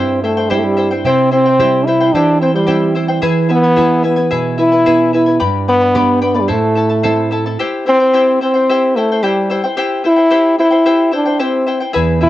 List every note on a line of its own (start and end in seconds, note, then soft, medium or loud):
0.00 1.02 G2 medium
0.00 0.19 C4 medium
0.00 0.23 E4 medium
0.00 0.23 G4 medium
0.00 0.23 C5 medium
0.00 0.22 E5 medium
0.00 0.23 G5 medium
0.23 0.51 A3 medium
0.23 0.37 E4 medium
0.23 0.37 C5 soft
0.23 0.37 E5 soft
0.23 0.36 G5 medium
0.37 0.49 E4 soft
0.37 0.49 C5 soft
0.37 0.50 G5 medium
0.50 0.60 G3 medium
0.50 1.04 G3 soft
0.50 1.04 C4 soft
0.50 0.76 E4 medium
0.50 1.04 E4 soft
0.50 0.77 G4 medium
0.50 0.77 C5 medium
0.50 0.76 E5 medium
0.50 0.77 G5 medium
0.59 0.65 A3 medium
0.64 0.91 G3 medium
0.77 0.91 E4 medium
0.77 0.91 C5 medium
0.77 0.91 E5 medium
0.77 0.89 G5 medium
0.91 1.05 E4 soft
0.91 1.05 C5 soft
0.91 1.05 G5 medium
1.05 2.11 C3 medium
1.05 1.30 C4 medium
1.05 1.30 E4 medium
1.05 1.32 G4 medium
1.05 1.31 C5 medium
1.05 1.30 E5 medium
1.05 1.31 G5 medium
1.31 1.87 C4 loud
1.31 1.46 E4 medium
1.31 1.46 C5 medium
1.31 1.45 E5 medium
1.31 1.45 G5 medium
1.46 1.59 E4 soft
1.46 1.59 C5 soft
1.46 1.59 G5 medium
1.59 2.12 G3 soft
1.59 2.12 C4 soft
1.59 1.86 E4 medium
1.59 2.13 E4 soft
1.59 1.87 G4 medium
1.59 1.87 C5 medium
1.59 1.86 E5 medium
1.59 1.87 G5 medium
1.86 2.15 E4 medium
1.86 2.01 E4 medium
1.86 2.00 C5 medium
1.86 2.01 E5 soft
1.86 1.99 G5 medium
2.00 2.14 E4 soft
2.00 2.14 C5 soft
2.00 2.14 G5 medium
2.14 3.20 E3 medium
2.14 2.41 D4 loud
2.14 2.41 E4 medium
2.14 2.42 G4 medium
2.14 2.42 C5 medium
2.14 2.40 E5 medium
2.14 2.41 G5 medium
2.41 2.54 C4 medium
2.41 2.55 E4 medium
2.41 2.54 C5 medium
2.41 2.55 E5 soft
2.41 2.54 G5 medium
2.54 2.93 G3 medium
2.54 2.66 E4 soft
2.54 2.66 C5 soft
2.54 2.67 G5 soft
2.67 3.21 G3 soft
2.67 3.21 C4 soft
2.67 2.94 E4 medium
2.67 3.22 E4 soft
2.67 2.95 G4 medium
2.67 2.95 C5 medium
2.67 2.94 E5 medium
2.67 2.95 G5 medium
2.95 3.08 E4 medium
2.95 3.08 C5 medium
2.95 3.09 E5 soft
2.95 3.07 G5 medium
3.08 3.21 E4 soft
3.08 3.22 C5 medium
3.08 3.22 G5 medium
3.22 4.29 E3 medium
3.22 3.48 E4 medium
3.22 3.50 G#4 medium
3.22 3.48 B4 medium
3.22 3.48 E5 medium
3.22 3.49 G#5 medium
3.49 4.01 B3 loud
3.49 3.63 E4 medium
3.49 3.63 B4 medium
3.49 3.63 E5 soft
3.49 3.62 G#5 medium
3.64 3.75 E4 soft
3.64 3.76 B4 soft
3.64 3.77 G#5 soft
3.76 4.30 B3 soft
3.76 4.03 E4 medium
3.76 4.31 E4 soft
3.76 4.04 G#4 medium
3.76 4.31 G#4 soft
3.76 4.03 B4 medium
3.76 4.02 E5 medium
3.76 4.04 G#5 medium
4.03 4.30 B3 medium
4.03 4.17 E4 medium
4.03 4.16 B4 medium
4.03 4.18 E5 medium
4.03 4.15 G#5 medium
4.16 4.30 E4 soft
4.16 4.30 B4 soft
4.16 4.30 G#5 medium
4.31 5.38 B2 medium
4.31 4.57 E4 medium
4.31 4.59 G#4 medium
4.31 4.58 B4 medium
4.31 4.57 E5 medium
4.31 4.58 G#5 medium
4.58 4.72 E4 medium
4.58 5.10 E4 loud
4.58 4.71 B4 medium
4.58 4.72 E5 medium
4.58 4.71 G#5 medium
4.72 4.85 E4 soft
4.72 4.85 B4 soft
4.72 4.86 G#5 soft
4.86 5.40 B3 soft
4.86 5.13 E4 medium
4.86 5.40 E4 soft
4.86 5.14 G#4 medium
4.86 5.40 G#4 soft
4.86 5.13 B4 medium
4.86 5.12 E5 medium
4.86 5.13 G#5 medium
5.13 5.27 E4 medium
5.13 5.40 E4 medium
5.13 5.26 B4 medium
5.13 5.27 E5 soft
5.13 5.25 G#5 medium
5.26 5.39 E4 soft
5.26 5.39 B4 soft
5.26 5.40 G#5 medium
5.40 6.47 G2 medium
5.40 5.68 G4 medium
5.40 5.67 B4 medium
5.40 5.67 D5 medium
5.40 5.67 G5 medium
5.40 5.68 B5 medium
5.68 6.19 B3 loud
5.68 5.81 B4 medium
5.68 5.81 D5 medium
5.68 5.82 G5 soft
5.68 5.80 B5 medium
5.81 5.94 B4 soft
5.81 5.94 D5 soft
5.81 5.94 B5 medium
5.95 6.48 G3 soft
5.95 6.49 B3 soft
5.95 6.49 D4 medium
5.95 6.23 G4 medium
5.95 6.21 B4 medium
5.95 6.21 D5 medium
5.95 6.20 G5 medium
5.95 6.21 B5 medium
6.21 6.37 B3 medium
6.21 6.35 B4 medium
6.21 6.34 D5 medium
6.21 6.36 G5 medium
6.21 6.33 B5 medium
6.34 6.50 G3 medium
6.34 6.48 B4 soft
6.34 6.49 D5 medium
6.34 6.49 B5 medium
6.48 7.56 A2 medium
6.48 7.28 A3 medium
6.48 6.75 E4 medium
6.48 6.75 A4 medium
6.48 6.76 C5 medium
6.48 6.74 E5 medium
6.48 6.76 A5 medium
6.75 6.90 E4 medium
6.75 6.89 A4 medium
6.75 6.90 E5 medium
6.75 6.88 A5 medium
6.89 7.03 E4 soft
6.89 7.03 A4 soft
6.89 7.03 A5 medium
7.03 7.58 A3 soft
7.03 7.58 C4 soft
7.03 7.31 E4 medium
7.03 7.58 E4 soft
7.03 7.31 A4 medium
7.03 7.31 C5 medium
7.03 7.30 E5 medium
7.03 7.31 A5 medium
7.31 7.46 E4 medium
7.31 7.46 A4 medium
7.31 7.45 E5 medium
7.31 7.45 A5 medium
7.46 7.59 E4 soft
7.46 7.60 A4 medium
7.46 7.60 A5 medium
7.59 7.85 E4 medium
7.59 7.87 G4 medium
7.59 7.86 C5 medium
7.59 7.85 E5 medium
7.59 7.86 G5 medium
7.86 8.39 C4 loud
7.86 8.00 E4 medium
7.86 8.00 C5 medium
7.86 8.00 E5 soft
7.86 7.99 G5 medium
8.00 8.13 E4 soft
8.00 8.13 C5 soft
8.00 8.13 G5 medium
8.13 8.41 E4 medium
8.13 8.41 G4 medium
8.13 8.41 C5 medium
8.13 8.40 E5 medium
8.13 8.41 G5 medium
8.41 8.98 C4 medium
8.41 8.55 E4 medium
8.41 8.54 C5 medium
8.41 8.55 E5 medium
8.41 8.53 G5 medium
8.54 8.69 E4 soft
8.54 8.69 C5 medium
8.54 8.68 G5 medium
8.69 8.96 E4 medium
8.69 8.96 G4 medium
8.69 8.96 C5 medium
8.69 8.95 E5 medium
8.69 8.97 G5 medium
8.96 9.25 A3 medium
8.96 9.10 E4 medium
8.96 9.10 C5 medium
8.96 9.10 E5 soft
8.96 9.11 G5 medium
9.12 9.22 E4 soft
9.12 9.23 C5 soft
9.12 9.23 G5 medium
9.23 9.64 G3 medium
9.23 9.49 E4 medium
9.23 9.50 G4 medium
9.23 9.50 C5 medium
9.23 9.49 E5 medium
9.23 9.50 G5 medium
9.50 9.64 E4 medium
9.50 9.63 C5 medium
9.50 9.64 E5 soft
9.50 9.62 G5 medium
9.64 9.76 E4 soft
9.64 9.76 C5 medium
9.64 9.77 G5 medium
9.77 10.03 E4 medium
9.77 10.05 G4 medium
9.77 10.04 C5 medium
9.77 10.03 E5 medium
9.77 10.04 G5 medium
10.04 10.17 E4 medium
10.04 10.57 E4 loud
10.04 10.16 C5 medium
10.04 10.18 E5 medium
10.04 10.15 G5 medium
10.16 10.30 E4 soft
10.16 10.30 C5 soft
10.16 10.30 G5 soft
10.30 10.58 E4 medium
10.30 10.59 G4 medium
10.30 10.58 C5 medium
10.30 10.57 E5 medium
10.30 10.59 G5 medium
10.58 10.71 E4 medium
10.58 11.11 E4 loud
10.58 10.71 C5 medium
10.58 10.73 E5 soft
10.58 10.69 G5 medium
10.70 10.85 E4 soft
10.70 10.85 C5 soft
10.70 10.85 G5 medium
10.86 11.11 E4 medium
10.86 11.14 G4 medium
10.86 11.12 C5 medium
10.86 11.10 E5 medium
10.86 11.12 G5 medium
11.11 11.42 D4 medium
11.11 11.26 E4 medium
11.11 11.25 C5 medium
11.11 11.27 E5 medium
11.11 11.24 G5 medium
11.26 11.39 E4 soft
11.26 11.39 C5 soft
11.26 11.39 G5 medium
11.39 11.82 C4 medium
11.39 11.66 E4 medium
11.39 11.68 G4 medium
11.39 11.66 C5 medium
11.39 11.65 E5 medium
11.39 11.67 G5 medium
11.66 11.81 E4 medium
11.66 11.80 C5 medium
11.66 11.82 E5 medium
11.66 11.79 G5 medium
11.80 11.92 E4 soft
11.80 11.94 C5 soft
11.80 11.94 G5 medium
11.93 12.29 E2 medium
11.93 12.20 E4 medium
11.93 12.22 G#4 medium
11.93 12.20 B4 medium
11.93 12.19 E5 medium
11.93 12.21 G#5 medium
12.21 12.29 B2 medium
12.21 12.29 E4 soft
12.21 12.29 E4 loud
12.21 12.29 B4 medium
12.21 12.29 E5 soft
12.21 12.29 G#5 medium